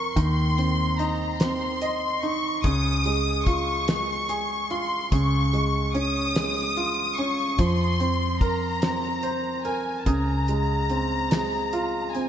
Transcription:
Already playing: fingered electric bass F1, grand piano F3 C4 A#4, violin section C#6
0.16 fingered electric bass D#2, grand piano D#3, violin section C6, kick, closed hi-hat
0.58 grand piano C4, closed hi-hat
0.99 grand piano D#4, violin section A#5, closed hi-hat
1.40 grand piano C4, violin section C6, snare, closed hi-hat
1.81 grand piano D#5, closed hi-hat
2.23 grand piano D#4, violin section C#6, closed hi-hat
2.64 fingered electric bass C#2, grand piano C#3, violin section D#6, kick, closed hi-hat
3.05 grand piano G#3, closed hi-hat
3.47 grand piano F4, violin section C#6, kick, closed hi-hat
3.88 grand piano G#3, snare, closed hi-hat
4.29 grand piano G#4, closed hi-hat
4.70 grand piano F4, violin section C6, closed hi-hat
5.12 fingered electric bass C#2, grand piano C#3, violin section C#6, kick, closed hi-hat
5.53 grand piano G#3, closed hi-hat
5.94 grand piano C#4, violin section D#6, closed hi-hat
6.35 grand piano G#3, snare, closed hi-hat
6.76 grand piano F4, closed hi-hat
7.18 grand piano C#4, violin section C#6, closed hi-hat
7.59 fingered electric bass F2, grand piano F3, violin section C6, kick, closed hi-hat
8.00 grand piano C4, closed hi-hat
8.41 grand piano A#4, violin section A#5, kick, closed hi-hat
8.82 grand piano C4, snare, closed hi-hat
9.23 grand piano C5, closed hi-hat
9.65 grand piano A#4, violin section G#5, closed hi-hat
10.00 violin section A5
10.06 fingered electric bass C#2, grand piano C#3, violin section A#5, kick, closed hi-hat
10.48 grand piano G#3, closed hi-hat
10.89 grand piano C4, closed hi-hat
11.31 grand piano G#3, snare, closed hi-hat
11.73 grand piano F4, closed hi-hat
12.15 grand piano C4, violin section G#5, closed hi-hat

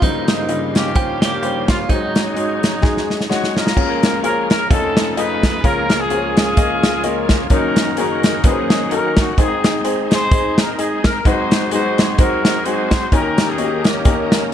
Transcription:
Already playing: french horn section C5
0.01 upright piano G1 G2 C#3 F#3 F4 C5, french horn section G2 C#3 F3 G3 D#4, tonewheel organ G2 C#3 F3 D#4 G4 C5, horn section A#3 C4 D#4, clean electric guitar D#4, kick, closed hi-hat
0.08 upright piano G3
0.28 snare, closed hi-hat
0.49 upright piano C#3 G3 F4 D#5, closed hi-hat
0.75 horn section A#3 C#4 G4, snare, closed hi-hat
0.95 upright piano G3 C#4 F4 C5, clean electric guitar G4, kick, closed hi-hat
1.21 horn section A#3 C#4 G4, clean electric guitar G4, snare, closed hi-hat
1.43 upright piano G3 C#4 F4 C5, closed hi-hat
1.68 horn section F4, clean electric guitar F4, kick, snare, closed hi-hat
1.89 upright piano G#1 G#2 G#3 D#4 F#4 C5, tonewheel organ F#3 C#4 D#4 G#4, french horn section F#3 G#3, horn section F#3 D#4, clean electric guitar D#4, kick, closed hi-hat
1.94 upright piano C#5
2.15 snare, closed hi-hat
2.35 upright piano G#3 D#4 F#4 C#5, closed hi-hat
2.63 snare, closed hi-hat
2.82 upright piano G#3 D#4 F#4 G#4, kick, snare
2.97 snare
3.10 snare
3.21 snare
3.29 upright piano G#3 D#4 F#4 C#5, horn section F#4, snare
3.44 snare
3.56 horn section F4 A#4, snare
3.67 snare
3.77 upright piano C#2 C#3 A#3 C#4 F4 G#4 C#5, tonewheel organ E3 G#3 A#3 C#4 G#4, kick, crash
3.83 tonewheel organ F3
4.03 snare, closed hi-hat
4.23 upright piano A#3 C#4 F4 G#4 C5, horn section A#4, closed hi-hat
4.29 upright piano C#5
4.50 horn section A#4, snare, closed hi-hat
4.70 upright piano F1 F2 A3 D#4 F4 C#5 G#5, tonewheel organ F3 A3 C#4 D#4 F4, horn section C#4 D#4 A4, kick, closed hi-hat
4.97 snare, closed hi-hat
5.16 upright piano A3 D#4 F4 G#4 D#5, horn section D#4 G#4 B4, closed hi-hat
5.43 kick, snare, closed hi-hat
5.64 tonewheel organ C#2 F3 G#3 A#3 C#4 G#4, upright piano C#2 C#3 A#3 C#4 F4 G#4 C#5, horn section F4 A#4, kick, closed hi-hat
5.90 snare, closed hi-hat
6.00 horn section F4 G#4
6.10 upright piano A#3 C#4 F4 G#4 C5, closed hi-hat
6.16 upright piano C#5
6.37 horn section F4 G#4, snare, closed hi-hat
6.57 upright piano A#3 C#4 F4 G#4 D#5, kick, closed hi-hat
6.83 snare, closed hi-hat
7.04 horn section G#3 A#3 F4, upright piano A#3 C#4 F4 G#4 D#5, closed hi-hat
7.29 kick, snare, closed hi-hat
7.50 upright piano F#1 F#2 A#3 C#4 D#4 F#4 C#5, tonewheel organ D#3 F#3 A#3 C#4 F4, horn section C#4 D#4 A#4, kick, closed hi-hat
7.57 tonewheel organ F#4
7.76 snare, closed hi-hat
7.97 upright piano A#3 C#4 D#4 F#4 G#4, horn section C#4 D#4 A#4, closed hi-hat
8.23 snare, closed hi-hat
8.44 upright piano A#3 C#4 D#4 F#4 B4, horn section C#4 D#4 G#4, kick, closed hi-hat
8.50 upright piano C5
8.70 snare, closed hi-hat
8.91 upright piano A#3 C#4 D#4 F#4 A4, horn section A#4, closed hi-hat
8.97 upright piano A#4
9.17 horn section F#4, kick, snare, closed hi-hat
9.38 upright piano G#1 G#2 D#4 G#4 C5, tonewheel organ G#3 C4 D#4, horn section C4 D#4 G#4, kick, closed hi-hat
9.64 snare, closed hi-hat
9.84 upright piano D#4 G#4 C5, closed hi-hat
10.11 horn section D#4 G#4 C5, snare, closed hi-hat
10.32 upright piano D#4 G#4 C5, kick, closed hi-hat
10.58 horn section A#4, snare, closed hi-hat
10.78 upright piano D#4 G#4 D#5, horn section G#4, closed hi-hat
11.04 horn section A#4, kick, snare, closed hi-hat
11.25 upright piano G#1 G#2 G#3 C4 D#4 F#4 B4, tonewheel organ F#3 G#3 C4 D#4 G#4, horn section D#4 F#4 C5, kick, closed hi-hat
11.31 upright piano C5
11.51 snare, closed hi-hat
11.71 upright piano G#3 B3 D#4 F#4 G#4, horn section D#4 F#4 C5, closed hi-hat
11.78 upright piano C4
11.98 snare, closed hi-hat
12.18 upright piano G#3 C4 D#4 F#4 C5, horn section D#4 F#4 A#4, kick, closed hi-hat
12.45 snare, closed hi-hat
12.65 upright piano G#3 C4 D#4 F#4 G#4, horn section D#4 F#4 C5, closed hi-hat
12.91 kick, snare, closed hi-hat
13.12 upright piano D#2 D#3 A#3 C#4 D#4 F#4 C#5, tonewheel organ D#3 A#3 C#4 D#4 A#4, horn section C#4 G4 A#4, kick, closed hi-hat
13.18 upright piano G4
13.38 snare, closed hi-hat
13.49 horn section C#4 G#4
13.58 upright piano A#3 C#4 D#4 F#4 D#5, closed hi-hat
13.64 upright piano G4
13.84 horn section A#3 C#4 G4, snare, closed hi-hat
14.05 upright piano A#3 C#4 D#4 G4 A#4, kick, closed hi-hat
14.32 snare, closed hi-hat

